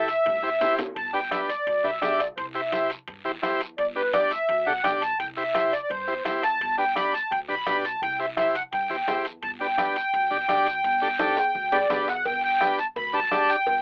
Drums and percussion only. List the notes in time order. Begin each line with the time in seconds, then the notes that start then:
0.08 high timbale, short guiro
0.26 low conga, high timbale, long guiro
0.61 low conga, high timbale, short guiro
0.79 low conga, high timbale, short guiro
0.96 bombo low, high conga, high timbale, long guiro
1.31 bombo rim, high conga, high timbale, short guiro
1.49 high timbale, short guiro
1.67 bombo low, high conga, high timbale, long guiro
2.02 bombo rim, high conga, high timbale, low timbale, short guiro
2.20 bombo rim, high timbale, short guiro
2.37 bombo low, high conga, high timbale, long guiro
2.72 bombo rim, high conga, high timbale, short guiro
2.90 high timbale, short guiro
3.08 bombo low, high conga, high timbale, long guiro
3.43 bombo rim, high conga, high timbale, short guiro
3.61 high timbale, short guiro
3.78 bombo low, high conga, high timbale, long guiro
4.13 bombo rim, high conga, high timbale, short guiro
4.31 high timbale, short guiro
4.49 bombo low, high conga, high timbale, long guiro
4.84 bombo low, bombo rim, high conga, high timbale, short guiro
5.02 high timbale, short guiro
5.20 bombo low, high conga, high timbale, long guiro
5.55 bombo rim, high conga, high timbale, short guiro
5.73 high timbale, short guiro
5.90 bombo low, high conga, high timbale, long guiro
6.25 bombo rim, high conga, high timbale, short guiro
6.43 bombo rim, high timbale, short guiro
6.61 bombo low, high conga, high timbale, long guiro
6.96 bombo rim, high conga, high timbale, short guiro
7.14 high timbale, short guiro
7.31 bombo low, high conga, high timbale, long guiro
7.67 bombo low, bombo rim, high conga, high timbale, short guiro
7.85 high timbale, short guiro
8.02 bombo low, high conga, high timbale, long guiro
8.37 bombo rim, high conga, high timbale, short guiro
8.55 high timbale, short guiro
8.72 bombo low, high conga, high timbale, long guiro
9.08 bombo low, bombo rim, high conga, high timbale, low timbale, short guiro
9.25 high timbale, short guiro
9.43 bombo low, high conga, high timbale, long guiro
9.78 bombo rim, high conga, high timbale, short guiro
9.96 high timbale, short guiro
10.13 bombo low, high conga, high timbale, long guiro
10.49 bombo low, bombo rim, high conga, high timbale, short guiro
10.67 high timbale, short guiro
10.84 bombo low, high conga, high timbale, long guiro
11.19 bombo rim, high conga, high timbale, short guiro
11.37 low timbale, short guiro
11.55 bombo low, high conga, long guiro
11.72 low timbale
11.90 bombo low, bombo rim, high conga, low timbale, short guiro
12.08 bombo rim, low timbale, short guiro
12.25 bombo low, cowbell, high conga, long guiro
12.61 bombo rim, high conga, short guiro
12.79 short guiro
12.96 bombo low, cowbell, high conga, long guiro
13.32 bombo rim, high conga, low timbale, short guiro
13.49 short guiro
13.67 bombo low, cowbell, high conga, long guiro